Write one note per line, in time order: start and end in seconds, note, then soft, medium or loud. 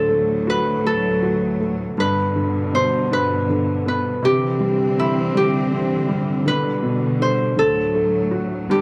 0.00 1.95 D2 medium
0.00 1.94 A2 medium
0.00 1.94 D3 medium
0.00 1.95 F#3 medium
0.00 0.86 A4 loud
0.00 0.56 C5 medium
0.09 0.83 A3 medium
0.47 1.21 F#4 medium
0.47 2.00 B4 medium
0.84 1.59 A3 soft
0.84 3.06 A4 medium
1.22 1.96 F#4 soft
1.60 1.97 A3 soft
1.98 4.19 G2 medium
1.98 4.21 G2 medium
1.98 4.22 B2 medium
1.98 4.22 D3 medium
1.98 2.81 B4 medium
2.36 3.48 D3 soft
2.73 4.19 B2 soft
2.73 3.19 C5 medium
3.11 4.20 D4 soft
3.11 3.88 B4 medium
3.49 4.21 D3 soft
3.86 4.22 B3 soft
3.86 5.93 B4 medium
4.22 6.42 C3 medium
4.22 7.55 D3 medium
4.22 6.44 E3 medium
4.22 6.44 C4 medium
4.22 5.37 G4 medium
4.60 5.33 G3 soft
4.97 5.70 C4 soft
4.97 7.61 E4 medium
5.34 6.07 G3 soft
5.34 7.72 G4 medium
5.72 6.44 C4 soft
6.08 6.45 G3 soft
6.45 7.56 B2 medium
6.45 7.18 D3 medium
6.45 7.56 G3 medium
6.45 7.28 B4 medium
6.83 7.55 B2 soft
7.20 7.55 D3 medium
7.20 8.81 C5 medium
7.57 8.69 D2 medium
7.57 8.69 A2 medium
7.57 8.66 D3 medium
7.57 8.69 F#3 medium
7.57 8.81 A4 medium
7.95 8.68 A3 medium
8.31 8.68 F#4 medium
8.69 8.81 G2 medium
8.69 8.81 D3 medium
8.69 8.81 B3 medium
8.69 8.81 G4 medium